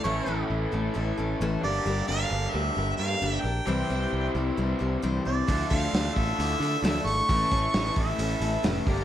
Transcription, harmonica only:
0.04 C#5
1.64 D5
2.08 F5
2.50 E5
2.97 F5
3.30 E5
3.41 G5
5.26 D5
5.70 F5
6.15 E5
7.07 C#6
7.98 E5

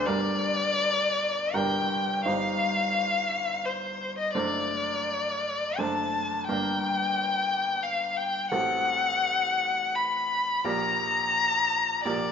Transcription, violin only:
0.06 D5
1.54 G5
2.25 F5
3.65 C5
4.18 D#5
4.34 D5
5.79 A5
6.47 G5
7.83 F5
8.17 G5
8.51 F#5
9.95 B5
10.64 A#5
12.05 D5

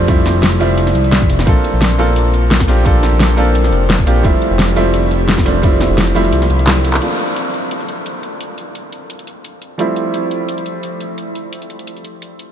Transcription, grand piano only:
Already playing: F3 G3 A3 C4 D4 E4
0.07 F3 G3 A3 C4 E4
0.60 F3 G3 A3 C4 E4
1.45 A#3 C4 D4 F4 A4
1.98 A#3 C4 D4 F4 A4
2.68 A#3 C4 D4 F4 G4
2.84 A#3 C4 D4 F4 A4
3.37 A#3 C4 D4 F4 A4
4.06 A#3 C4 D4 F4 G4
4.23 F3 G3 A3 C4 E4
4.76 F3 G3 A3 C4 E4
5.45 F3 G3 A3 C4 D4
5.62 F3 G3 A3 C4 E4
6.15 F3 G3 A3 C4 E4
7.01 A#3 C4 D4 F4 A4
9.78 F3 G3 A3 C4 E4

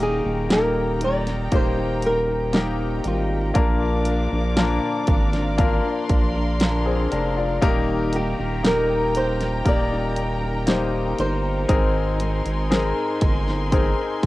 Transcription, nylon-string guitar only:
0.03 G#4
0.53 A#4
1.04 D5
1.55 C5
2.06 A#4
2.57 G4
3.07 F4
8.16 G4
8.67 A#4
9.17 C5
9.68 D5
11.20 C5

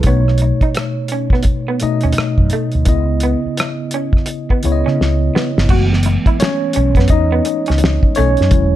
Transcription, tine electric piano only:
0.05 B2 A3 D#4 C#5
1.81 B2 A3 D#4 D#5
2.87 C#3 B3 E4 D#5
4.64 C#3 B3 E4 C#5
4.72 D#5
5.70 E3 G#3 A3 B3
6.40 C#4 C#5
7.10 D#4 D#5
8.16 C#4 C#5
8.52 D3 F#3 G#3 E4

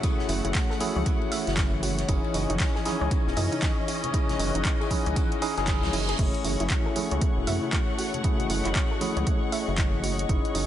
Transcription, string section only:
Already playing: E3 A3 F#5
2.09 C#4
2.36 D#5
6.36 A3 F#5
10.29 C#4
10.60 E3

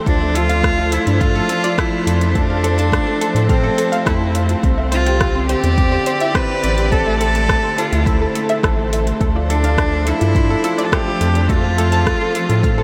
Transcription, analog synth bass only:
0.06 D2
1.07 G2
2.07 F2
3.35 A2
4.06 F2
4.63 C2
5.64 E2
6.64 A1
7.92 D2
8.63 A1
9.20 D2
10.21 G2
11.21 F2
12.50 A2

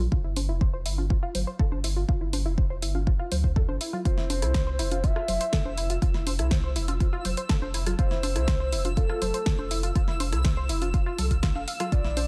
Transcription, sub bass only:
0.12 G1
0.49 F1
0.86 G1
1.35 G1
1.72 G1
2.09 G1
2.46 F1
2.82 G1
3.32 D2
3.69 G1
4.05 F1
4.42 C2
4.79 F1
5.28 F1
5.65 F1
6.02 F1
6.39 C2
6.76 F1
7.25 F1
7.62 F1
7.99 F1
8.36 C2
8.73 F1
9.22 F1
9.59 F1
9.96 F1
10.32 C2
10.69 F1
11.18 C2
11.55 F1
11.92 A#1

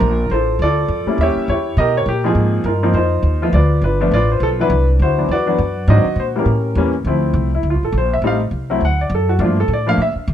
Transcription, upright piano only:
Already playing: D4 F4 A#4
0.31 F4 A4 C5
0.62 F4 A4 D5
1.07 G3 A#3 C#4 E4
1.21 G4 C#5 E5
1.49 E4 G4 C#5
1.78 G4 A#4 D#5
1.97 C#5
2.09 G4
2.24 F3 A#3 C4 D#4 F4 G#4
2.66 D#4 F4 A#4
2.83 F3 A#3 C4 D#4
2.95 D#4 F4 C5
3.42 F3 A3 B3 F4
3.54 F4 B4 D5
3.84 D4 F4 B4
4.01 F3 A3 B3 D4
4.14 F4 B4 D5
4.32 C5
4.43 A4
4.60 E3 F#3 B3 D4 E4 B4
5.02 E4 F#4 C5
5.18 E3 F#3 B3 D4
5.31 F#4 B4 D5
5.47 E3 F#3 B3 D4
5.88 D#3 F#3 C4 D4 F#4 C5 D#5
6.20 C5
6.35 E3 G3 A#3 E4 G4 A#4
6.39 C#4
6.77 E3 G3 A#3 C#4
7.07 F3 A3 C4 E4
7.55 E4
7.70 F4
7.85 A4
7.98 C5
8.13 E5
8.24 G3 A3 C4 D#4 F5
8.70 F#3 A3 C4 E4
8.85 F#5
9.01 D5
9.15 A4
9.29 F#4
9.40 F3 A3 A#3 D4
9.44 F4
9.60 A4
9.73 D5
9.86 F3 A3 A#3 D4 F5
10.02 E5

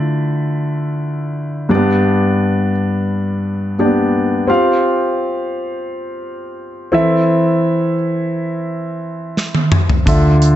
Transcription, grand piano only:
Already playing: D3 A3 E4 F4 D5
1.69 G2 A#3 D4 G4 D5
1.75 B3
3.79 A#3 D4 G4 D5
3.85 B3
4.47 C4 F4 G4 F5
6.92 E3 C4 E4 A4 E5
10.06 D3 D4 F4 A4 E5

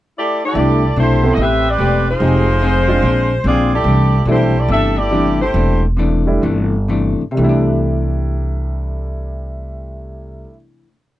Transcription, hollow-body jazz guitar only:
0.54 C3 A3 D4 E4
0.97 C3 A3 D4 E4
1.38 A3 C4 G4 B4
1.79 A3 C4 G4 B4
2.21 F3 C4 D#4 G#4
2.62 F3 C4 D#4 G#4
3.03 A#2 G#3 C4 D4
3.45 A#2 G#3 C4 D4
3.85 C3 E3 A3 D4
4.26 C3 E3 A3 D4
4.68 C3 E3 A3 D4
5.11 C3 E3 A3 D4
5.53 C3 E3 A3 D4
5.97 C3 E3 A3 D4
6.42 C3 E3 A3 D4
6.88 C3 E3 A3 D4
7.31 C3
7.38 E3
7.44 A3
7.49 D4

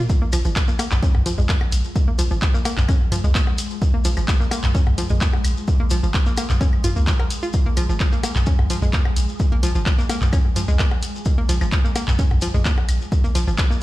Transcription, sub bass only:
0.22 A#1
0.33 A#1
0.45 G#1
0.92 A#1
1.15 C2
1.38 A#1
1.72 A#1
2.08 A#1
2.19 A#1
2.31 G#1
2.78 A#1
3.24 C2
3.94 A#1
4.05 A#1
4.17 G#1
4.64 A#1
4.87 C2
5.10 A#1
5.44 A#1
5.80 A#1
5.91 A#1
6.03 G#1
6.50 A#1
6.84 G#1
6.96 C#2
7.66 A#1
7.77 A#1
7.89 G#1
8.36 A#1
8.59 C2
8.82 A#1
9.16 A#1
9.52 A#1
9.63 A#1
9.75 G#1
10.22 A#1
10.68 C2
11.38 A#1
11.49 A#1
11.61 G#1
12.08 A#1
12.31 C2
12.54 A#1
12.89 A#1
13.24 A#1
13.35 A#1
13.47 G#1

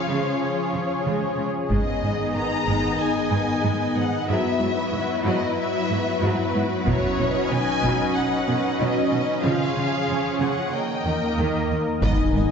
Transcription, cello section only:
0.09 C#3
0.73 C#3
1.06 C#3
1.38 C#3
1.71 G#2
2.02 G#2
2.34 G#2
2.67 G#2
3.31 G#2
3.64 G#2
3.95 G#2
4.28 G#2
4.60 G#2
4.92 G#2
5.24 G#2
5.90 G#2
6.21 G#2
6.54 G#2
6.86 B2
7.18 B2
7.50 B2
7.83 B2
8.48 B2
8.81 B2
9.12 B2
9.45 C#3
9.77 C#3
10.09 C#3
10.41 C#3
11.05 D#2
11.38 D#2
11.71 D#2
12.02 G#2
12.34 G#2

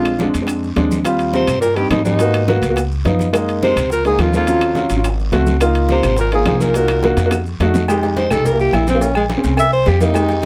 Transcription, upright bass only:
Already playing: A#1
0.35 F2
0.77 D#2
1.48 G2
1.91 G#2
2.62 C#2
3.05 F#2
3.76 C#2
4.19 D#2
4.90 G#1
5.32 C#2
6.04 G#1
6.46 C2
7.17 F2
7.60 F2
8.31 C2
8.73 A#1
9.44 C2
9.87 F2

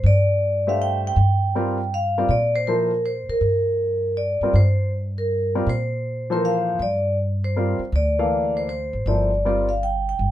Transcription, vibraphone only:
0.06 D5
0.69 F5
0.82 G5
1.07 G5
1.94 F5
2.31 D5
2.56 C5
2.67 A#4
3.06 C5
3.30 A#4
4.17 D5
4.56 C5
5.18 A#4
5.69 C5
6.33 A#4
6.45 F5
6.82 D5
7.44 C5
7.96 D5
8.57 C5
8.69 C5
9.07 D5
9.69 F5
9.83 G5
10.09 G5

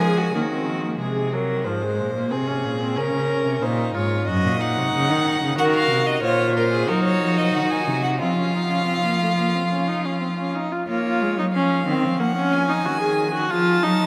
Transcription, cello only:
Already playing: F3
0.35 D#3
1.01 C3
1.67 G#2
2.00 A#2
2.32 C3
2.65 A#2
2.97 C#3
3.13 C#3
3.46 C3
3.63 A#2
3.96 G#2
4.28 F#2
4.45 A#2
4.78 C3
4.94 C#3
5.10 D#3
5.43 C#3
5.59 D#3
5.91 C3
6.24 A#2
6.89 F#3
7.21 F3
7.54 D#3
7.88 C3
8.21 F3
10.88 A#3
11.21 G#3
11.38 F#3
11.54 F3
11.87 D#3
12.04 F3
12.86 D#3
13.51 F3
13.84 F#3
14.00 F3

